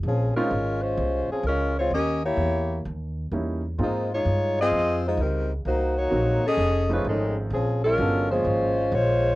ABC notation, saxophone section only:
X:1
M:4/4
L:1/8
Q:"Swing" 1/4=128
K:Bbdor
V:1 name="Saxophone section"
[F,CDA] [A,DFB]2 [A,DFc]2 [F,CDA] [A,DFB] [A,CFd] | [DGBe] [B,_FGd]3 z4 | [A,EFc] [A,EFd]2 [CFAe]2 [A,EFc] [G,CEB] z | [B,E_Gc] [B,EGd]2 [DA=Ae]2 [^G,^CF=B] [E,G,CA] z |
[F,CDA] [A,DFB]2 [A,DFc]3 [A,Fcd]2 |]